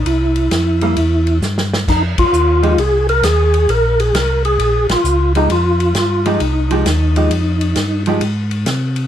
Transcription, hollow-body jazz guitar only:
X:1
M:4/4
L:1/8
Q:"Swing" 1/4=132
K:Cphr
V:1 name="Hollow-body jazz guitar"
z3 [G,B,=E] z4 | z3 [F,A,EG] z4 | z6 z [F,A,EG] | z3 [F,A,EG] z [F,A,EG] z [F,A,EG] |
z3 [F,A,EG] z4 |]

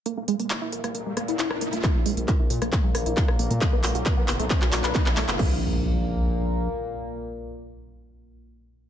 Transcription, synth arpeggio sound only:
X:1
M:4/4
L:1/16
Q:1/4=135
K:none
V:1 name="Synth arpeggio sound"
_B, B, _A, B, E E _B B, B, A, B, E E B B, B, | _B, B, _A, B, E E _B B, B, A, B, E E B B, B, | A, B, ^F F B B, B, A, B, F F B B, B, A, B, | _B,2 z12 z2 |
z16 |]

